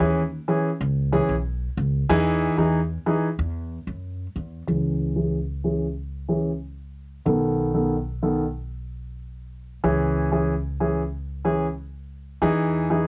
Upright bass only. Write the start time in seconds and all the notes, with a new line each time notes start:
0.00 D#2
0.81 C#2
1.29 B1
1.77 C#2
2.10 E2
2.58 E2
3.39 E2
3.87 F#2
4.36 E2
4.68 C#2
7.26 B1
9.84 C#2
12.42 E2